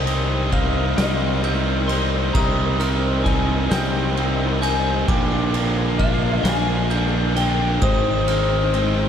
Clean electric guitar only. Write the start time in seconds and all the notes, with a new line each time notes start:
Already playing: G5
0.53 F5
0.97 D#5
1.88 C6
2.33 A#5
3.24 G#5
3.71 G5
4.62 G#5
5.07 G5
5.98 F5
6.43 G#5
7.03 G5
7.36 G5
7.82 C5